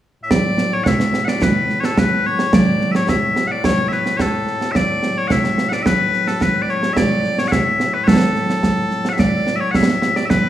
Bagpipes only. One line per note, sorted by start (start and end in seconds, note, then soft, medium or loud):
0.23 10.49 A2 medium
0.23 0.31 E5 medium
0.31 0.73 D5 loud
0.73 0.84 C#5 medium
0.84 1.25 E5 medium
0.84 0.87 F#5 medium
1.25 1.42 D5 medium
1.25 1.28 F#5 medium
1.42 1.80 B4 medium
1.80 1.85 C#5 medium
1.85 1.99 A4 medium
1.99 2.26 B4 medium
2.26 2.54 C#5 medium
2.54 2.92 D5 medium
2.92 2.96 E5 medium
2.96 3.09 C#5 medium
3.09 3.47 E5 medium
3.47 3.52 F#5 medium
3.52 3.65 D5 medium
3.65 3.88 C#5 loud
3.88 3.93 E5 medium
3.93 4.17 B4 medium
4.17 4.21 C#5 medium
4.21 4.72 A4 medium
4.72 4.76 E5 loud
4.76 5.18 D5 loud
5.18 5.28 C#5 medium
5.28 5.32 F#5 medium
5.32 5.69 E5 medium
5.69 5.83 D5 medium
5.69 5.73 F#5 medium
5.83 6.27 B4 loud
5.83 5.86 E5 loud
6.27 6.42 A4 medium
6.42 6.62 B4 medium
6.62 6.70 D5 medium
6.70 6.93 C#5 medium
6.93 7.39 D5 loud
6.93 6.97 E5 loud
7.39 7.48 C#5 medium
7.48 7.94 E5 medium
7.48 7.52 F#5 medium
7.94 8.04 B4 medium
8.04 9.09 A4 loud
8.04 8.08 C#5 loud
9.09 9.19 E5 medium
9.09 9.13 F#5 medium
9.19 9.56 D5 loud
9.56 9.60 E5 medium
9.60 9.71 C#5 medium
9.71 9.76 F#5 medium
9.76 10.16 E5 medium
10.16 10.26 D5 medium
10.26 10.30 E5 loud
10.30 10.49 B4 loud